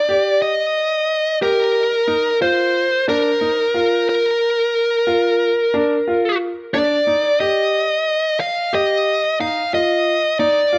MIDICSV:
0, 0, Header, 1, 3, 480
1, 0, Start_track
1, 0, Key_signature, -3, "major"
1, 0, Tempo, 664452
1, 2224, Time_signature, 11, 3, 24, 8
1, 7790, End_track
2, 0, Start_track
2, 0, Title_t, "Lead electric guitar"
2, 0, Program_c, 0, 29
2, 0, Note_on_c, 0, 74, 84
2, 300, Note_off_c, 0, 74, 0
2, 303, Note_on_c, 0, 75, 76
2, 994, Note_off_c, 0, 75, 0
2, 1029, Note_on_c, 0, 70, 83
2, 1718, Note_off_c, 0, 70, 0
2, 1748, Note_on_c, 0, 72, 76
2, 2197, Note_off_c, 0, 72, 0
2, 2232, Note_on_c, 0, 70, 75
2, 2948, Note_off_c, 0, 70, 0
2, 2956, Note_on_c, 0, 70, 57
2, 4603, Note_off_c, 0, 70, 0
2, 4869, Note_on_c, 0, 74, 77
2, 5345, Note_off_c, 0, 74, 0
2, 5348, Note_on_c, 0, 75, 71
2, 6066, Note_off_c, 0, 75, 0
2, 6069, Note_on_c, 0, 77, 91
2, 6315, Note_off_c, 0, 77, 0
2, 6318, Note_on_c, 0, 75, 87
2, 6764, Note_off_c, 0, 75, 0
2, 6795, Note_on_c, 0, 77, 83
2, 7015, Note_off_c, 0, 77, 0
2, 7039, Note_on_c, 0, 75, 86
2, 7484, Note_off_c, 0, 75, 0
2, 7511, Note_on_c, 0, 74, 76
2, 7790, Note_off_c, 0, 74, 0
2, 7790, End_track
3, 0, Start_track
3, 0, Title_t, "Grand piano"
3, 0, Program_c, 1, 0
3, 63, Note_on_c, 1, 67, 67
3, 353, Note_off_c, 1, 67, 0
3, 1021, Note_on_c, 1, 67, 72
3, 1311, Note_off_c, 1, 67, 0
3, 1500, Note_on_c, 1, 63, 68
3, 1646, Note_off_c, 1, 63, 0
3, 1741, Note_on_c, 1, 65, 68
3, 2032, Note_off_c, 1, 65, 0
3, 2224, Note_on_c, 1, 62, 74
3, 2369, Note_off_c, 1, 62, 0
3, 2465, Note_on_c, 1, 63, 60
3, 2609, Note_off_c, 1, 63, 0
3, 2705, Note_on_c, 1, 65, 64
3, 2995, Note_off_c, 1, 65, 0
3, 3662, Note_on_c, 1, 65, 67
3, 3953, Note_off_c, 1, 65, 0
3, 4145, Note_on_c, 1, 62, 64
3, 4291, Note_off_c, 1, 62, 0
3, 4389, Note_on_c, 1, 65, 66
3, 4678, Note_off_c, 1, 65, 0
3, 4870, Note_on_c, 1, 62, 81
3, 5014, Note_off_c, 1, 62, 0
3, 5107, Note_on_c, 1, 63, 56
3, 5252, Note_off_c, 1, 63, 0
3, 5349, Note_on_c, 1, 67, 69
3, 5638, Note_off_c, 1, 67, 0
3, 6305, Note_on_c, 1, 67, 73
3, 6596, Note_off_c, 1, 67, 0
3, 6789, Note_on_c, 1, 63, 66
3, 6934, Note_off_c, 1, 63, 0
3, 7030, Note_on_c, 1, 65, 67
3, 7319, Note_off_c, 1, 65, 0
3, 7508, Note_on_c, 1, 63, 79
3, 7653, Note_off_c, 1, 63, 0
3, 7749, Note_on_c, 1, 65, 66
3, 7790, Note_off_c, 1, 65, 0
3, 7790, End_track
0, 0, End_of_file